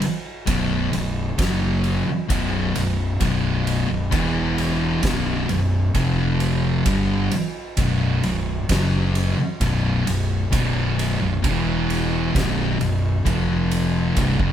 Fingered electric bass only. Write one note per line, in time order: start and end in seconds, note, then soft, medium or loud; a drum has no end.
0.03 muted fingered electric bass stroke soft
0.48 0.90 B0 loud
0.93 1.35 B0 medium
1.39 2.03 F#1 medium
2.07 muted fingered electric bass stroke soft
2.30 2.72 B0 medium
2.76 3.18 B0 medium
3.21 3.85 B0 medium
3.90 4.11 B0 medium
4.13 5.00 E1 medium
5.04 5.46 B0 medium
5.50 5.92 B0 medium
5.95 6.82 F1 medium
6.86 7.29 G1 medium
7.33 muted fingered electric bass stroke soft
7.78 8.20 B0 medium
8.24 8.66 B0 medium
8.70 9.34 F#1 medium
9.39 muted fingered electric bass stroke soft
9.61 10.03 B0 loud
10.07 10.49 B0 medium
10.53 11.16 B0 medium
11.22 11.42 B0 medium
11.44 12.31 E1 medium
12.35 12.77 B0 loud
12.81 13.23 B0 medium
13.26 14.13 F1 medium
14.17 14.38 C1 medium
14.40 14.53 F#1 loud